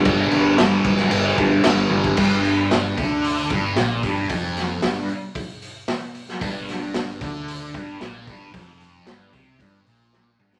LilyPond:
<<
  \new Staff \with { instrumentName = "Distorted electric guitar" } { \clef bass \time 4/4 \key c \major \tempo 4 = 113 <g, d g>8 <d g>8 <g, d g>4 <g, d g>8 <d g>8 <g, d g>8 <d g>8 | g,4. d4 g,8 bes,8 g,8 | f,4 g,8 r2 r8 | g,4. d4 g,8 bes,8 g,8 |
f,4 g,8 c8 g,8 bes,4 g,8 | }
  \new Staff \with { instrumentName = "Fingered electric bass" } { \clef bass \time 4/4 \key c \major g,,8 g,,8 g,,8 g,,8 g,,8 g,,8 g,,8 g,,8 | g,,4. d,4 g,,8 bes,,8 g,,8 | f,,4 g,,8 r2 r8 | g,,4. d,4 g,,8 bes,,8 g,,8 |
f,,4 g,,8 c,8 g,,8 bes,,4 g,,8 | }
  \new DrumStaff \with { instrumentName = "Drums" } \drummode { \time 4/4 <cymc bd>8 cymc8 <cymc sn>8 <cymc bd>16 sn16 cymc8 <cymc bd>8 <cymc sn>8 tommh16 bd16 | <cymc bd>8 hho8 <hho sn>8 <hho bd>8 hho8 <hho bd>8 <hho sn>8 <hho bd>8 | <hho bd>8 <hho sn>8 <hho sn>8 hho8 <hho bd>8 hho8 <hho sn>8 hho16 sn16 | <hho bd>8 <hho sn>8 <hho sn>8 <hho bd>8 hho8 <hho bd>8 <hho sn>8 <hho bd>8 |
<hho bd>8 hho8 <hho sn>8 <hho bd>8 <hho bd>8 hho8 sn8 toml16 sn16 | }
>>